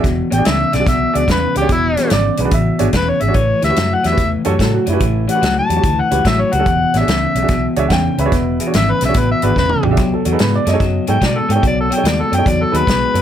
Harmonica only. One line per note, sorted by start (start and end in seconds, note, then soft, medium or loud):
0.33 0.49 G5 medium
0.48 0.76 E5 medium
0.75 0.87 D5 medium
0.88 1.19 E5 medium
1.17 1.29 D5 medium
1.31 1.56 B4 medium
1.57 1.70 G4 medium
1.72 2.11 E4 medium
2.97 3.11 B4 loud
3.09 3.23 C#5 medium
3.22 3.37 E5 medium
3.35 3.62 C#5 medium
3.64 3.95 E5 medium
3.94 4.09 F#5 medium
4.07 4.28 E5 loud
5.31 5.56 F#5 medium
5.59 6.02 A5 loud
6.01 6.29 F#5 medium
6.28 6.43 E5 medium
6.41 6.55 C#5 medium
6.54 6.99 F#5 loud
6.98 7.76 E5 medium
8.77 8.93 E5 medium
8.91 9.03 B4 medium
9.05 9.20 E5 medium
9.18 9.30 B4 medium
9.31 9.47 E5 medium
9.46 9.57 B4 medium
9.59 9.84 B4 medium
11.10 11.27 G5 loud
11.25 11.41 D5 medium
11.40 11.55 A4 medium
11.54 11.65 G5 medium
11.67 11.79 D5 medium
11.81 11.96 A4 medium
11.95 12.10 G5 medium
12.08 12.23 D5 medium
12.21 12.37 A4 medium
12.35 12.50 G5 medium
12.49 12.64 D5 medium
12.63 12.79 A4 loud
12.77 13.22 B4 loud